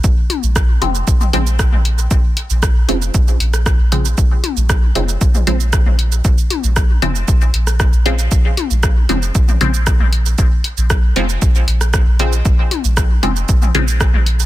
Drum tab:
HH |--x---x---x---x-|--x---x---x---x-|--x---x---x---x-|--x---x---x---x-|
SH |x--xx--xxx-xx--x|x--xx--xxx-xx--x|x--xx--xxx-xx--x|xx-xx--xxx-xxx-x|
SD |----r-------r---|----r------rr---|----r-------r---|----r------rr---|
T1 |--o---o---o-----|------o---------|--o---o---o-----|--o---o---------|
T2 |---------o---o--|----------------|---------o---o--|----------------|
BD |o---o---o---o---|o---o---o---o---|o---o---o---o---|o---o---o---o---|

HH |--x---x---x---x-|--x---x---x---x-|--x---x---x---x-|
SH |x--xx--xxx-xx--x|x--xx--xxx-xx--x|x--xx--xxx-xx--x|
SD |----r-------r---|----r------rr---|----r-------r---|
T1 |--o---o---o-----|------o---------|--o---o---o-----|
T2 |---------o---o--|----------------|---------o---o--|
BD |o---o---o---o---|o---o---o---o---|o---o---o---o---|